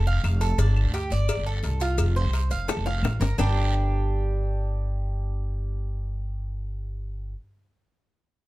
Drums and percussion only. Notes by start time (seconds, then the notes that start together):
0.07 maracas
0.24 cowbell, short guiro, claves, maracas
0.41 cowbell, short guiro, maracas
0.59 cowbell, long guiro, maracas
0.76 claves, maracas
0.94 cowbell, short guiro, maracas
1.10 short guiro, maracas
1.28 cowbell, long guiro, claves, maracas
1.47 maracas
1.63 cowbell, short guiro, maracas
1.80 cowbell, short guiro, maracas
1.98 cowbell, long guiro, claves, maracas
2.16 maracas
2.33 cowbell, short guiro, maracas
2.51 short guiro, maracas
2.68 cowbell, high bongo, long guiro, claves, maracas
2.86 high bongo, maracas
3.03 cowbell, low bongo, short guiro, claves, maracas
3.21 cowbell, low bongo, short guiro, maracas
3.38 low bongo, long guiro, claves, maracas